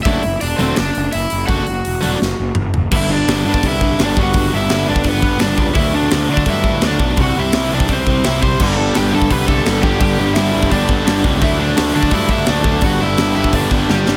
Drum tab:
CC |----------------|----------------|x---------------|----------------|
HH |o-o-o-o-o-o-o-o-|o-o-o-o---------|----o---o---o---|o---o---o---o---|
SD |--------o-------|--------o-------|----o-------o---|----o-------o---|
T2 |----------------|------------o---|----------------|----------------|
FT |----------------|--------------o-|----------------|----------------|
BD |o---------------|o---------------|o------oo-o---o-|o------oo-o---o-|

CC |----------------|----------------|x---------------|----------------|
HH |o---o---o---o---|o---o---o---o---|----o---o---o---|o---o---o---o---|
SD |----o-------o---|----o-------o---|----o-------o---|----o-------o---|
T2 |----------------|----------------|----------------|----------------|
FT |----------------|----------------|----------------|----------------|
BD |o------oo-o---o-|o------oo-o---o-|o------oo-o---o-|o------oo-o---o-|

CC |----------------|----------------|
HH |o---o---o---o---|o---o---o-------|
SD |----o-------o---|----o-------o-o-|
T2 |----------------|----------------|
FT |----------------|----------------|
BD |o------oo-o---o-|o------oo-o-----|